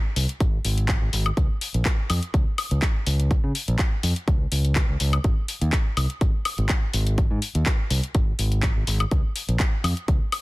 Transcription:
0.16 C2, open hi-hat
0.29 closed hi-hat
0.40 G#1, kick, closed hi-hat
0.65 G#1, open hi-hat
0.78 closed hi-hat
0.88 kick, clap, closed hi-hat
1.02 G#1
1.13 G#1, open hi-hat
1.26 closed hi-hat, high woodblock
1.37 C#2, kick, closed hi-hat
1.61 open hi-hat
1.74 A#1, closed hi-hat
1.85 kick, clap, closed hi-hat
2.10 F2, open hi-hat, high woodblock
2.23 closed hi-hat
2.34 C#2, kick, closed hi-hat
2.58 open hi-hat, high woodblock
2.71 C#2, closed hi-hat
2.82 kick, clap, closed hi-hat
3.07 C#2, open hi-hat
3.20 closed hi-hat
3.31 kick, closed hi-hat
3.44 C#3
3.55 open hi-hat
3.68 A#1, closed hi-hat
3.79 kick, clap, closed hi-hat
4.03 F2, open hi-hat
4.16 closed hi-hat
4.28 C#2, kick, closed hi-hat
4.52 C#2, open hi-hat
4.65 closed hi-hat
4.76 kick, clap, closed hi-hat
4.89 C#2
5.00 C#2, open hi-hat
5.13 closed hi-hat, high woodblock
5.24 G#1, kick, closed hi-hat
5.48 open hi-hat
5.61 D#2, closed hi-hat
5.72 kick, clap, closed hi-hat
5.97 C2, open hi-hat, high woodblock
6.10 closed hi-hat
6.21 G#1, kick, closed hi-hat
6.45 open hi-hat, high woodblock
6.58 G#1, closed hi-hat
6.69 kick, clap, closed hi-hat
6.94 G#1, open hi-hat
7.07 closed hi-hat
7.18 kick, closed hi-hat
7.31 G#2
7.42 open hi-hat
7.55 D#2, closed hi-hat
7.66 kick, clap, closed hi-hat
7.90 C2, open hi-hat
8.04 closed hi-hat
8.15 G#1, kick, closed hi-hat
8.39 G#1, open hi-hat
8.52 closed hi-hat
8.63 kick, clap, closed hi-hat
8.76 G#1
8.87 G#1, open hi-hat
9.00 closed hi-hat, high woodblock
9.11 C#2, kick, closed hi-hat
9.36 open hi-hat
9.48 A#1, closed hi-hat
9.60 kick, clap, closed hi-hat
9.84 F2, open hi-hat, high woodblock
9.97 closed hi-hat
10.08 C#2, kick, closed hi-hat
10.32 open hi-hat, high woodblock

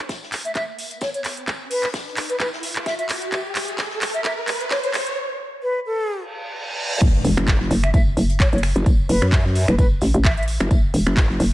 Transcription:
Already playing: riser
0.09 kick, snare, closed hi-hat, tambourine
0.22 snare
0.32 snare, clap, open hi-hat, tambourine
0.45 E5, closed hi-hat
0.55 E5, kick, clap, closed hi-hat, tambourine
0.79 open hi-hat, tambourine
0.91 closed hi-hat
1.01 C#5, kick, snare, closed hi-hat, tambourine
1.14 C#5, closed hi-hat
1.24 snare, clap, open hi-hat, tambourine
1.37 closed hi-hat
1.48 kick, clap, closed hi-hat, tambourine
1.71 B4, open hi-hat
1.83 clap, closed hi-hat
1.94 kick, snare, closed hi-hat, tambourine
2.07 snare
2.17 clap, open hi-hat, tambourine
2.30 B4, closed hi-hat
2.40 B4, kick, clap, closed hi-hat, tambourine
2.53 snare
2.62 snare, open hi-hat, tambourine
2.76 clap, closed hi-hat
2.86 E5, kick, snare, closed hi-hat, tambourine
2.99 E5, closed hi-hat
3.09 clap, open hi-hat, tambourine
3.22 closed hi-hat
3.32 kick, clap, closed hi-hat, tambourine
3.55 clap, open hi-hat, tambourine
3.68 closed hi-hat
3.78 kick, snare, clap, closed hi-hat, tambourine
3.90 snare
4.01 snare, clap, open hi-hat, tambourine
4.14 E5, closed hi-hat
4.24 E5, kick, clap, closed hi-hat, tambourine
4.47 clap, open hi-hat, tambourine
4.60 closed hi-hat
4.70 C#5, kick, snare, clap, closed hi-hat, tambourine
4.84 C#5, closed hi-hat
4.94 snare, clap, open hi-hat, tambourine
5.07 closed hi-hat
5.63 B4
5.86 A4
6.09 reverse cymbal
7.01 F#1, kick, closed hi-hat, crash, tambourine, impact
7.24 E1, open hi-hat, tambourine
7.37 F#1, finger snap
7.48 kick, snare, clap, closed hi-hat, tambourine
7.60 snare
7.70 F#1, snare, open hi-hat, tambourine
7.84 E5, finger snap
7.94 F#1 E5, kick, closed hi-hat, tambourine
8.17 F#1, open hi-hat, tambourine
8.30 closed hi-hat
8.39 C#5, kick, snare, clap, closed hi-hat, tambourine
8.53 F#1 C#5, closed hi-hat
8.58 closed hi-hat
8.63 finger snap, snare, open hi-hat, tambourine
8.76 F#1, closed hi-hat
8.86 F#1, kick, closed hi-hat, tambourine
9.09 F#1 B4, open hi-hat
9.22 F#2, finger snap
9.32 kick, snare, clap, closed hi-hat, tambourine
9.46 snare
9.55 open hi-hat, tambourine
9.68 F#1 B4, finger snap
9.79 F#1 B4, kick, closed hi-hat, tambourine
10.01 A1, snare, open hi-hat, tambourine
10.14 A1, closed hi-hat
10.25 E5, kick, snare, clap, closed hi-hat, tambourine
10.37 E5, closed hi-hat
10.43 closed hi-hat
10.48 open hi-hat, tambourine
10.60 F#1, finger snap, closed hi-hat
10.71 F#1, kick, closed hi-hat, tambourine
10.94 E1, open hi-hat, tambourine
11.07 F#1, finger snap
11.17 kick, snare, clap, closed hi-hat, tambourine
11.30 snare
11.40 F#1, snare, open hi-hat, tambourine

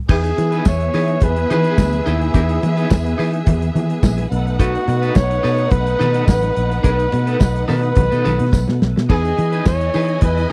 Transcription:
0.09 E2 E3 B3 D#4 G#4 B4 E5, kick, crash
0.24 muted clean electric guitar stroke, closed hi-hat
0.37 E3, muted clean electric guitar stroke, closed hi-hat, muted conga
0.52 D#4 G#4 B4, closed hi-hat
0.65 E2 C#5, kick, snare, tambourine, high conga
0.80 muted clean electric guitar stroke, closed hi-hat
0.94 E3 D#4 G#4 B4, open hi-hat
1.08 muted clean electric guitar stroke, closed hi-hat
1.20 E2 B4, muted clean electric guitar stroke, kick, closed hi-hat, muted conga
1.36 muted clean electric guitar stroke, closed hi-hat
1.50 E3 D#4 G#4 B4, closed hi-hat, low conga
1.64 D#4 G#4 B4, closed hi-hat
1.78 D2, kick, snare, tambourine, high conga
1.93 muted clean electric guitar stroke, closed hi-hat, high conga
2.06 D#2 D#4 E4 G#4 B4, closed hi-hat
2.21 muted clean electric guitar stroke, closed hi-hat
2.34 E2 D#4 G#4 B4, kick, closed hi-hat
2.49 muted clean electric guitar stroke, closed hi-hat
2.63 E3, muted clean electric guitar stroke, closed hi-hat, muted conga
2.77 D#4 G#4 B4, closed hi-hat
2.90 E2, muted clean electric guitar stroke, kick, snare, tambourine, high conga
3.05 muted clean electric guitar stroke, closed hi-hat
3.18 E3 D#4 G#4 B4, open hi-hat
3.33 muted clean electric guitar stroke, closed hi-hat
3.46 E2, muted clean electric guitar stroke, kick, closed hi-hat, muted conga, low conga
3.62 muted clean electric guitar stroke, closed hi-hat
3.75 E3, closed hi-hat, low conga
3.89 muted clean electric guitar stroke, closed hi-hat
4.03 A#1, muted clean electric guitar stroke, kick, snare, tambourine, high conga
4.18 muted clean electric guitar stroke, closed hi-hat, high conga
4.31 B1 A3 D#4 B4 F#5, closed hi-hat
4.46 muted clean electric guitar stroke, closed hi-hat
4.59 D#4 F#4 A4 B4, kick, closed hi-hat
4.75 muted clean electric guitar stroke, closed hi-hat
4.88 B2, muted clean electric guitar stroke, closed hi-hat, muted conga
5.02 D#4 A4 B4, closed hi-hat
5.15 B1 C#5, muted clean electric guitar stroke, kick, snare, tambourine, high conga
5.30 muted clean electric guitar stroke, closed hi-hat
5.43 B2 D#4 A4 B4, open hi-hat
5.58 muted clean electric guitar stroke, closed hi-hat
5.71 B1 B4, muted clean electric guitar stroke, kick, closed hi-hat, muted conga
5.86 muted clean electric guitar stroke, closed hi-hat
5.99 B2 D#4 A4 B4, closed hi-hat, muted conga, low conga
6.14 D#4 A4 B4, closed hi-hat
6.28 A1 B4, muted clean electric guitar stroke, kick, snare, tambourine, high conga
6.42 muted clean electric guitar stroke, closed hi-hat, high conga
6.57 A#1, closed hi-hat
6.70 muted clean electric guitar stroke, closed hi-hat
6.83 B1 D#4 A4 B4, kick, closed hi-hat
6.99 muted clean electric guitar stroke, closed hi-hat
7.12 B2, muted clean electric guitar stroke, closed hi-hat, muted conga
7.27 D#4 A4 B4, closed hi-hat
7.39 B1 B4, muted clean electric guitar stroke, kick, snare, tambourine, high conga
7.54 muted clean electric guitar stroke, closed hi-hat
7.68 B2 D#4 A4 B4, open hi-hat, low conga
7.83 muted clean electric guitar stroke, closed hi-hat
7.95 B1, muted clean electric guitar stroke, kick, closed hi-hat, muted conga, low conga
8.10 B2 D#4 A4 B4, snare, closed hi-hat
8.24 B1 D#4 A4 B4, closed hi-hat, low conga
8.39 B2, muted clean electric guitar stroke, closed hi-hat
8.52 B1, muted clean electric guitar stroke, kick, snare, tambourine, high conga
8.68 B2, muted clean electric guitar stroke, snare, high conga
8.82 B1, snare
8.96 B2, muted clean electric guitar stroke, snare
9.09 E2 E3 D#4 E4 G#4 B4 D#5 G#5, kick, crash
9.24 muted clean electric guitar stroke, closed hi-hat
9.37 E3, muted clean electric guitar stroke, closed hi-hat, muted conga
9.52 D#4 G#4 B4, closed hi-hat
9.65 E2 C#5, muted clean electric guitar stroke, kick, snare, tambourine, high conga
9.81 muted clean electric guitar stroke, closed hi-hat
9.94 E3 D#4 G#4 B4, open hi-hat
10.09 muted clean electric guitar stroke, closed hi-hat
10.21 E2 B4, muted clean electric guitar stroke, kick, closed hi-hat, muted conga
10.37 muted clean electric guitar stroke, snare, closed hi-hat

